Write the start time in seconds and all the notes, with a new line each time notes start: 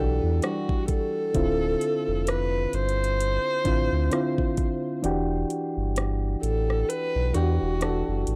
Already playing: B1 E3 D4 F#4 A4
0.00 G4
0.23 E2
0.42 E3 G3 D4 F#4, cross-stick, closed hi-hat
0.69 kick
0.88 A4, kick, closed hi-hat
1.34 D1 D3 C4 E4 F4, kick, closed hi-hat
1.81 closed hi-hat
2.08 F1
2.27 B4, cross-stick, closed hi-hat
2.73 G1 C5, closed hi-hat
2.89 closed hi-hat
3.04 closed hi-hat
3.20 closed hi-hat
3.64 A1 D3 C4 E4 F4, kick, closed hi-hat
3.92 D2
4.10 D3 C4 E4 F4, cross-stick, closed hi-hat
4.38 kick
4.57 kick, closed hi-hat
5.02 E1 E3 D4 F#4 G4, closed hi-hat
5.50 closed hi-hat
5.77 G1
5.96 cross-stick, closed hi-hat
6.43 A1 A4, closed hi-hat
6.70 cross-stick
6.89 B4, closed hi-hat
7.15 B1
7.34 E2 E3 D4 F#4 G4, closed hi-hat
7.62 E1
7.80 E3 D4 F#4 A4, cross-stick, closed hi-hat
8.08 F#1
8.27 A1, closed hi-hat